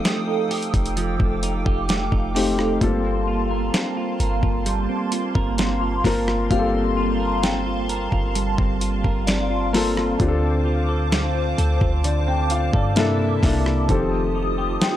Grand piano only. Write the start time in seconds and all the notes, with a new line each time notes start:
Already playing: A3 C4 D#4 G4
2.34 A3 C4 D#4 G4
2.81 A#3 C4 F4 A4
6.04 A#3 C4 F4 A#4
6.50 A#3 C4 F4 G4
6.59 A4
9.73 A#3 C4 F4 A4
10.19 C4 D4 F4 G4
10.28 A4
12.05 D5
12.28 G5
12.51 F5
12.74 D5
12.96 A#3 D4 E4 A4
13.42 A#3 D4 E4 A4
13.88 D#3 C4 G4 A4
14.82 G5